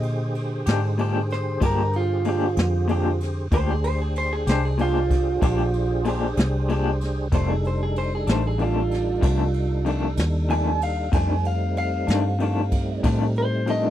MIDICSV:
0, 0, Header, 1, 6, 480
1, 0, Start_track
1, 0, Tempo, 634921
1, 2657, Time_signature, 12, 3, 24, 8
1, 10509, End_track
2, 0, Start_track
2, 0, Title_t, "Clean electric guitar"
2, 0, Program_c, 0, 27
2, 0, Note_on_c, 0, 75, 78
2, 964, Note_off_c, 0, 75, 0
2, 1002, Note_on_c, 0, 72, 93
2, 1223, Note_off_c, 0, 72, 0
2, 1249, Note_on_c, 0, 70, 86
2, 1467, Note_off_c, 0, 70, 0
2, 1483, Note_on_c, 0, 65, 86
2, 2401, Note_off_c, 0, 65, 0
2, 2675, Note_on_c, 0, 72, 109
2, 2782, Note_off_c, 0, 72, 0
2, 2802, Note_on_c, 0, 68, 90
2, 2905, Note_on_c, 0, 72, 100
2, 2906, Note_off_c, 0, 68, 0
2, 3017, Note_off_c, 0, 72, 0
2, 3037, Note_on_c, 0, 68, 73
2, 3143, Note_off_c, 0, 68, 0
2, 3159, Note_on_c, 0, 72, 110
2, 3264, Note_off_c, 0, 72, 0
2, 3271, Note_on_c, 0, 68, 97
2, 3380, Note_off_c, 0, 68, 0
2, 3397, Note_on_c, 0, 72, 102
2, 3503, Note_off_c, 0, 72, 0
2, 3516, Note_on_c, 0, 68, 81
2, 3623, Note_off_c, 0, 68, 0
2, 3639, Note_on_c, 0, 65, 126
2, 4558, Note_off_c, 0, 65, 0
2, 5554, Note_on_c, 0, 72, 111
2, 5661, Note_off_c, 0, 72, 0
2, 5672, Note_on_c, 0, 68, 101
2, 5780, Note_off_c, 0, 68, 0
2, 5799, Note_on_c, 0, 72, 101
2, 5903, Note_off_c, 0, 72, 0
2, 5918, Note_on_c, 0, 68, 89
2, 6023, Note_off_c, 0, 68, 0
2, 6034, Note_on_c, 0, 72, 109
2, 6141, Note_off_c, 0, 72, 0
2, 6161, Note_on_c, 0, 68, 91
2, 6265, Note_off_c, 0, 68, 0
2, 6285, Note_on_c, 0, 72, 114
2, 6387, Note_off_c, 0, 72, 0
2, 6405, Note_on_c, 0, 68, 102
2, 6521, Note_off_c, 0, 68, 0
2, 6521, Note_on_c, 0, 65, 112
2, 7440, Note_off_c, 0, 65, 0
2, 7944, Note_on_c, 0, 80, 93
2, 8173, Note_off_c, 0, 80, 0
2, 8189, Note_on_c, 0, 77, 82
2, 8416, Note_off_c, 0, 77, 0
2, 8426, Note_on_c, 0, 80, 96
2, 8654, Note_off_c, 0, 80, 0
2, 8668, Note_on_c, 0, 77, 76
2, 8896, Note_off_c, 0, 77, 0
2, 8908, Note_on_c, 0, 77, 117
2, 9836, Note_off_c, 0, 77, 0
2, 10115, Note_on_c, 0, 72, 96
2, 10341, Note_off_c, 0, 72, 0
2, 10358, Note_on_c, 0, 75, 102
2, 10509, Note_off_c, 0, 75, 0
2, 10509, End_track
3, 0, Start_track
3, 0, Title_t, "Tonewheel organ"
3, 0, Program_c, 1, 16
3, 0, Note_on_c, 1, 50, 66
3, 0, Note_on_c, 1, 67, 69
3, 0, Note_on_c, 1, 68, 74
3, 0, Note_on_c, 1, 72, 71
3, 2628, Note_off_c, 1, 67, 0
3, 2629, Note_off_c, 1, 72, 0
3, 2630, Note_off_c, 1, 68, 0
3, 2631, Note_off_c, 1, 50, 0
3, 2652, Note_on_c, 1, 62, 75
3, 2653, Note_on_c, 1, 68, 74
3, 2653, Note_on_c, 1, 72, 72
3, 2655, Note_on_c, 1, 67, 69
3, 5503, Note_off_c, 1, 62, 0
3, 5503, Note_off_c, 1, 72, 0
3, 5504, Note_off_c, 1, 68, 0
3, 5505, Note_off_c, 1, 67, 0
3, 5531, Note_on_c, 1, 63, 75
3, 5535, Note_on_c, 1, 55, 73
3, 5535, Note_on_c, 1, 69, 71
3, 5538, Note_on_c, 1, 62, 75
3, 8386, Note_off_c, 1, 63, 0
3, 8387, Note_off_c, 1, 55, 0
3, 8387, Note_off_c, 1, 69, 0
3, 8389, Note_off_c, 1, 62, 0
3, 8404, Note_on_c, 1, 57, 76
3, 8409, Note_on_c, 1, 60, 68
3, 8413, Note_on_c, 1, 55, 69
3, 8413, Note_on_c, 1, 63, 76
3, 10509, Note_off_c, 1, 55, 0
3, 10509, Note_off_c, 1, 57, 0
3, 10509, Note_off_c, 1, 60, 0
3, 10509, Note_off_c, 1, 63, 0
3, 10509, End_track
4, 0, Start_track
4, 0, Title_t, "Clean electric guitar"
4, 0, Program_c, 2, 27
4, 499, Note_on_c, 2, 67, 64
4, 515, Note_on_c, 2, 62, 62
4, 528, Note_on_c, 2, 56, 51
4, 643, Note_off_c, 2, 67, 0
4, 651, Note_off_c, 2, 62, 0
4, 657, Note_off_c, 2, 56, 0
4, 741, Note_on_c, 2, 46, 60
4, 751, Note_on_c, 2, 56, 77
4, 761, Note_on_c, 2, 62, 81
4, 764, Note_on_c, 2, 67, 70
4, 884, Note_off_c, 2, 46, 0
4, 889, Note_off_c, 2, 56, 0
4, 894, Note_off_c, 2, 62, 0
4, 895, Note_off_c, 2, 67, 0
4, 1214, Note_on_c, 2, 46, 80
4, 1223, Note_on_c, 2, 56, 90
4, 1230, Note_on_c, 2, 62, 88
4, 1232, Note_on_c, 2, 67, 91
4, 1360, Note_off_c, 2, 46, 0
4, 1365, Note_off_c, 2, 56, 0
4, 1368, Note_off_c, 2, 62, 0
4, 1369, Note_off_c, 2, 67, 0
4, 1704, Note_on_c, 2, 46, 60
4, 1713, Note_on_c, 2, 56, 57
4, 1725, Note_on_c, 2, 62, 73
4, 1729, Note_on_c, 2, 67, 67
4, 1845, Note_off_c, 2, 46, 0
4, 1849, Note_off_c, 2, 56, 0
4, 1855, Note_off_c, 2, 62, 0
4, 1857, Note_off_c, 2, 67, 0
4, 2175, Note_on_c, 2, 46, 66
4, 2187, Note_on_c, 2, 56, 68
4, 2199, Note_on_c, 2, 62, 76
4, 2202, Note_on_c, 2, 67, 73
4, 2320, Note_off_c, 2, 46, 0
4, 2326, Note_off_c, 2, 56, 0
4, 2332, Note_off_c, 2, 62, 0
4, 2333, Note_off_c, 2, 67, 0
4, 2661, Note_on_c, 2, 46, 80
4, 2668, Note_on_c, 2, 56, 95
4, 2672, Note_on_c, 2, 62, 76
4, 2679, Note_on_c, 2, 67, 89
4, 2803, Note_off_c, 2, 46, 0
4, 2806, Note_off_c, 2, 56, 0
4, 2808, Note_off_c, 2, 62, 0
4, 2812, Note_off_c, 2, 67, 0
4, 3379, Note_on_c, 2, 67, 52
4, 3393, Note_on_c, 2, 62, 53
4, 3404, Note_on_c, 2, 56, 51
4, 3522, Note_off_c, 2, 67, 0
4, 3528, Note_off_c, 2, 62, 0
4, 3534, Note_off_c, 2, 56, 0
4, 3612, Note_on_c, 2, 46, 66
4, 3624, Note_on_c, 2, 56, 61
4, 3628, Note_on_c, 2, 62, 66
4, 3636, Note_on_c, 2, 67, 75
4, 3758, Note_off_c, 2, 46, 0
4, 3764, Note_off_c, 2, 56, 0
4, 3766, Note_off_c, 2, 62, 0
4, 3770, Note_off_c, 2, 67, 0
4, 4094, Note_on_c, 2, 46, 77
4, 4100, Note_on_c, 2, 56, 86
4, 4103, Note_on_c, 2, 62, 92
4, 4111, Note_on_c, 2, 67, 87
4, 4239, Note_off_c, 2, 46, 0
4, 4242, Note_off_c, 2, 56, 0
4, 4243, Note_off_c, 2, 62, 0
4, 4247, Note_off_c, 2, 67, 0
4, 4572, Note_on_c, 2, 46, 78
4, 4584, Note_on_c, 2, 56, 61
4, 4595, Note_on_c, 2, 62, 74
4, 4601, Note_on_c, 2, 67, 75
4, 4718, Note_off_c, 2, 46, 0
4, 4723, Note_off_c, 2, 56, 0
4, 4729, Note_off_c, 2, 62, 0
4, 4732, Note_off_c, 2, 67, 0
4, 5057, Note_on_c, 2, 46, 74
4, 5065, Note_on_c, 2, 56, 85
4, 5077, Note_on_c, 2, 62, 79
4, 5085, Note_on_c, 2, 67, 68
4, 5199, Note_off_c, 2, 46, 0
4, 5204, Note_off_c, 2, 56, 0
4, 5210, Note_off_c, 2, 62, 0
4, 5214, Note_off_c, 2, 67, 0
4, 5534, Note_on_c, 2, 41, 89
4, 5541, Note_on_c, 2, 51, 93
4, 5549, Note_on_c, 2, 57, 91
4, 5553, Note_on_c, 2, 62, 94
4, 5678, Note_off_c, 2, 41, 0
4, 5682, Note_off_c, 2, 51, 0
4, 5685, Note_off_c, 2, 57, 0
4, 5687, Note_off_c, 2, 62, 0
4, 6253, Note_on_c, 2, 62, 57
4, 6263, Note_on_c, 2, 57, 55
4, 6275, Note_on_c, 2, 51, 45
4, 6397, Note_off_c, 2, 62, 0
4, 6403, Note_off_c, 2, 57, 0
4, 6409, Note_off_c, 2, 51, 0
4, 6489, Note_on_c, 2, 41, 58
4, 6499, Note_on_c, 2, 51, 62
4, 6512, Note_on_c, 2, 57, 73
4, 6517, Note_on_c, 2, 62, 75
4, 6636, Note_off_c, 2, 41, 0
4, 6641, Note_off_c, 2, 51, 0
4, 6647, Note_off_c, 2, 57, 0
4, 6650, Note_off_c, 2, 62, 0
4, 6966, Note_on_c, 2, 41, 86
4, 6975, Note_on_c, 2, 51, 88
4, 6979, Note_on_c, 2, 57, 97
4, 6987, Note_on_c, 2, 62, 91
4, 7114, Note_off_c, 2, 41, 0
4, 7119, Note_off_c, 2, 51, 0
4, 7121, Note_off_c, 2, 57, 0
4, 7125, Note_off_c, 2, 62, 0
4, 7446, Note_on_c, 2, 41, 63
4, 7455, Note_on_c, 2, 51, 69
4, 7460, Note_on_c, 2, 57, 70
4, 7470, Note_on_c, 2, 62, 74
4, 7595, Note_off_c, 2, 41, 0
4, 7599, Note_off_c, 2, 51, 0
4, 7602, Note_off_c, 2, 57, 0
4, 7606, Note_off_c, 2, 62, 0
4, 7930, Note_on_c, 2, 41, 61
4, 7938, Note_on_c, 2, 51, 69
4, 7944, Note_on_c, 2, 57, 70
4, 7955, Note_on_c, 2, 62, 66
4, 8077, Note_off_c, 2, 41, 0
4, 8081, Note_off_c, 2, 51, 0
4, 8084, Note_off_c, 2, 57, 0
4, 8089, Note_off_c, 2, 62, 0
4, 8406, Note_on_c, 2, 41, 82
4, 8413, Note_on_c, 2, 51, 93
4, 8420, Note_on_c, 2, 57, 78
4, 8425, Note_on_c, 2, 62, 95
4, 8555, Note_off_c, 2, 41, 0
4, 8559, Note_off_c, 2, 51, 0
4, 8562, Note_off_c, 2, 57, 0
4, 8565, Note_off_c, 2, 62, 0
4, 9125, Note_on_c, 2, 62, 59
4, 9142, Note_on_c, 2, 57, 56
4, 9150, Note_on_c, 2, 51, 48
4, 9276, Note_off_c, 2, 62, 0
4, 9284, Note_off_c, 2, 57, 0
4, 9288, Note_off_c, 2, 51, 0
4, 9365, Note_on_c, 2, 41, 55
4, 9375, Note_on_c, 2, 51, 62
4, 9386, Note_on_c, 2, 57, 62
4, 9391, Note_on_c, 2, 62, 70
4, 9516, Note_off_c, 2, 41, 0
4, 9520, Note_off_c, 2, 51, 0
4, 9526, Note_off_c, 2, 57, 0
4, 9529, Note_off_c, 2, 62, 0
4, 9853, Note_on_c, 2, 41, 82
4, 9859, Note_on_c, 2, 51, 84
4, 9865, Note_on_c, 2, 57, 91
4, 9869, Note_on_c, 2, 62, 97
4, 10000, Note_off_c, 2, 41, 0
4, 10003, Note_off_c, 2, 51, 0
4, 10007, Note_off_c, 2, 57, 0
4, 10008, Note_off_c, 2, 62, 0
4, 10330, Note_on_c, 2, 41, 57
4, 10340, Note_on_c, 2, 51, 65
4, 10349, Note_on_c, 2, 57, 58
4, 10356, Note_on_c, 2, 62, 72
4, 10479, Note_off_c, 2, 41, 0
4, 10485, Note_off_c, 2, 51, 0
4, 10489, Note_off_c, 2, 57, 0
4, 10492, Note_off_c, 2, 62, 0
4, 10509, End_track
5, 0, Start_track
5, 0, Title_t, "Fingered electric bass"
5, 0, Program_c, 3, 33
5, 0, Note_on_c, 3, 46, 92
5, 480, Note_off_c, 3, 46, 0
5, 509, Note_on_c, 3, 44, 92
5, 1202, Note_off_c, 3, 44, 0
5, 1222, Note_on_c, 3, 43, 85
5, 1918, Note_off_c, 3, 43, 0
5, 1943, Note_on_c, 3, 41, 98
5, 2638, Note_off_c, 3, 41, 0
5, 2658, Note_on_c, 3, 38, 102
5, 3355, Note_off_c, 3, 38, 0
5, 3378, Note_on_c, 3, 36, 101
5, 4075, Note_off_c, 3, 36, 0
5, 4097, Note_on_c, 3, 34, 96
5, 4794, Note_off_c, 3, 34, 0
5, 4819, Note_on_c, 3, 36, 100
5, 5515, Note_off_c, 3, 36, 0
5, 5537, Note_on_c, 3, 29, 99
5, 6234, Note_off_c, 3, 29, 0
5, 6256, Note_on_c, 3, 33, 86
5, 6954, Note_off_c, 3, 33, 0
5, 6977, Note_on_c, 3, 36, 100
5, 7675, Note_off_c, 3, 36, 0
5, 7691, Note_on_c, 3, 39, 102
5, 8392, Note_off_c, 3, 39, 0
5, 8414, Note_on_c, 3, 41, 94
5, 9115, Note_off_c, 3, 41, 0
5, 9131, Note_on_c, 3, 43, 99
5, 9834, Note_off_c, 3, 43, 0
5, 9855, Note_on_c, 3, 45, 91
5, 10509, Note_off_c, 3, 45, 0
5, 10509, End_track
6, 0, Start_track
6, 0, Title_t, "Drums"
6, 21, Note_on_c, 9, 51, 69
6, 97, Note_off_c, 9, 51, 0
6, 263, Note_on_c, 9, 51, 60
6, 339, Note_off_c, 9, 51, 0
6, 501, Note_on_c, 9, 51, 86
6, 518, Note_on_c, 9, 38, 118
6, 576, Note_off_c, 9, 51, 0
6, 594, Note_off_c, 9, 38, 0
6, 746, Note_on_c, 9, 51, 73
6, 821, Note_off_c, 9, 51, 0
6, 984, Note_on_c, 9, 51, 65
6, 1001, Note_on_c, 9, 38, 33
6, 1059, Note_off_c, 9, 51, 0
6, 1077, Note_off_c, 9, 38, 0
6, 1221, Note_on_c, 9, 36, 95
6, 1221, Note_on_c, 9, 51, 94
6, 1296, Note_off_c, 9, 51, 0
6, 1297, Note_off_c, 9, 36, 0
6, 1460, Note_on_c, 9, 51, 61
6, 1535, Note_off_c, 9, 51, 0
6, 1697, Note_on_c, 9, 51, 65
6, 1773, Note_off_c, 9, 51, 0
6, 1939, Note_on_c, 9, 51, 80
6, 1956, Note_on_c, 9, 38, 111
6, 2015, Note_off_c, 9, 51, 0
6, 2032, Note_off_c, 9, 38, 0
6, 2182, Note_on_c, 9, 51, 68
6, 2258, Note_off_c, 9, 51, 0
6, 2421, Note_on_c, 9, 51, 69
6, 2439, Note_on_c, 9, 38, 36
6, 2497, Note_off_c, 9, 51, 0
6, 2514, Note_off_c, 9, 38, 0
6, 2659, Note_on_c, 9, 36, 126
6, 2659, Note_on_c, 9, 51, 90
6, 2734, Note_off_c, 9, 36, 0
6, 2735, Note_off_c, 9, 51, 0
6, 2902, Note_on_c, 9, 51, 73
6, 2977, Note_off_c, 9, 51, 0
6, 3142, Note_on_c, 9, 51, 61
6, 3217, Note_off_c, 9, 51, 0
6, 3379, Note_on_c, 9, 51, 87
6, 3396, Note_on_c, 9, 38, 115
6, 3454, Note_off_c, 9, 51, 0
6, 3472, Note_off_c, 9, 38, 0
6, 3618, Note_on_c, 9, 51, 70
6, 3694, Note_off_c, 9, 51, 0
6, 3858, Note_on_c, 9, 36, 87
6, 3860, Note_on_c, 9, 51, 68
6, 3878, Note_on_c, 9, 38, 35
6, 3934, Note_off_c, 9, 36, 0
6, 3936, Note_off_c, 9, 51, 0
6, 3953, Note_off_c, 9, 38, 0
6, 4097, Note_on_c, 9, 36, 106
6, 4097, Note_on_c, 9, 51, 88
6, 4172, Note_off_c, 9, 51, 0
6, 4173, Note_off_c, 9, 36, 0
6, 4336, Note_on_c, 9, 51, 62
6, 4411, Note_off_c, 9, 51, 0
6, 4573, Note_on_c, 9, 51, 71
6, 4648, Note_off_c, 9, 51, 0
6, 4816, Note_on_c, 9, 51, 86
6, 4833, Note_on_c, 9, 38, 124
6, 4891, Note_off_c, 9, 51, 0
6, 4909, Note_off_c, 9, 38, 0
6, 5060, Note_on_c, 9, 51, 67
6, 5136, Note_off_c, 9, 51, 0
6, 5299, Note_on_c, 9, 51, 69
6, 5316, Note_on_c, 9, 38, 34
6, 5374, Note_off_c, 9, 51, 0
6, 5392, Note_off_c, 9, 38, 0
6, 5535, Note_on_c, 9, 51, 83
6, 5536, Note_on_c, 9, 36, 124
6, 5611, Note_off_c, 9, 51, 0
6, 5612, Note_off_c, 9, 36, 0
6, 5779, Note_on_c, 9, 51, 61
6, 5854, Note_off_c, 9, 51, 0
6, 6017, Note_on_c, 9, 51, 55
6, 6093, Note_off_c, 9, 51, 0
6, 6252, Note_on_c, 9, 51, 81
6, 6270, Note_on_c, 9, 38, 120
6, 6328, Note_off_c, 9, 51, 0
6, 6345, Note_off_c, 9, 38, 0
6, 6496, Note_on_c, 9, 51, 68
6, 6571, Note_off_c, 9, 51, 0
6, 6737, Note_on_c, 9, 51, 68
6, 6755, Note_on_c, 9, 38, 34
6, 6813, Note_off_c, 9, 51, 0
6, 6830, Note_off_c, 9, 38, 0
6, 6974, Note_on_c, 9, 36, 104
6, 6976, Note_on_c, 9, 51, 91
6, 7050, Note_off_c, 9, 36, 0
6, 7052, Note_off_c, 9, 51, 0
6, 7211, Note_on_c, 9, 51, 59
6, 7287, Note_off_c, 9, 51, 0
6, 7452, Note_on_c, 9, 51, 64
6, 7528, Note_off_c, 9, 51, 0
6, 7689, Note_on_c, 9, 51, 89
6, 7707, Note_on_c, 9, 38, 115
6, 7765, Note_off_c, 9, 51, 0
6, 7782, Note_off_c, 9, 38, 0
6, 7936, Note_on_c, 9, 51, 74
6, 8012, Note_off_c, 9, 51, 0
6, 8176, Note_on_c, 9, 51, 69
6, 8251, Note_off_c, 9, 51, 0
6, 8412, Note_on_c, 9, 51, 94
6, 8413, Note_on_c, 9, 36, 127
6, 8488, Note_off_c, 9, 51, 0
6, 8489, Note_off_c, 9, 36, 0
6, 8654, Note_on_c, 9, 51, 69
6, 8730, Note_off_c, 9, 51, 0
6, 8894, Note_on_c, 9, 51, 63
6, 8970, Note_off_c, 9, 51, 0
6, 9132, Note_on_c, 9, 51, 81
6, 9149, Note_on_c, 9, 38, 110
6, 9207, Note_off_c, 9, 51, 0
6, 9225, Note_off_c, 9, 38, 0
6, 9374, Note_on_c, 9, 51, 67
6, 9449, Note_off_c, 9, 51, 0
6, 9612, Note_on_c, 9, 51, 66
6, 9615, Note_on_c, 9, 36, 82
6, 9687, Note_off_c, 9, 51, 0
6, 9691, Note_off_c, 9, 36, 0
6, 9855, Note_on_c, 9, 51, 88
6, 9856, Note_on_c, 9, 36, 100
6, 9931, Note_off_c, 9, 36, 0
6, 9931, Note_off_c, 9, 51, 0
6, 10096, Note_on_c, 9, 51, 54
6, 10172, Note_off_c, 9, 51, 0
6, 10335, Note_on_c, 9, 51, 67
6, 10411, Note_off_c, 9, 51, 0
6, 10509, End_track
0, 0, End_of_file